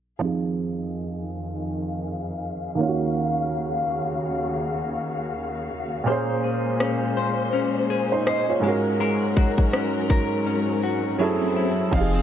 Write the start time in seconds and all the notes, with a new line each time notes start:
0.19 F2 D#3 F3 C4 G#4 F5
0.23 D#4 G#4 F5
2.75 C#3 D#3 A#3 C#4 F#4
2.79 D#2 F4 F5
2.88 F#4
6.04 A#2 A#3 C#4 C5
6.08 A#2 G#3 C#4 G#4 C5
6.44 G#4
6.80 C#4, cross-stick
7.17 C5
7.53 C#4
7.90 G#4
8.12 D#4 C5
8.27 C5 D#5, cross-stick
8.49 F4 C#5
8.60 G#2 F#3 G#3 A#4
8.64 C#4 F#4 A#4
9.00 G#3 A#4, swell
9.37 F#4, kick
9.58 kick
9.73 C#4, cross-stick
10.10 A#4, kick
10.47 C#4
10.83 F#4
11.18 F#2 F#3 A3 C#4 E4 G#4
11.22 A4
11.56 E4
11.91 F1 F3 C4 D#4 F4 G4 C5 D#5 F5 G#5, kick, crash
12.01 G#4
12.14 C4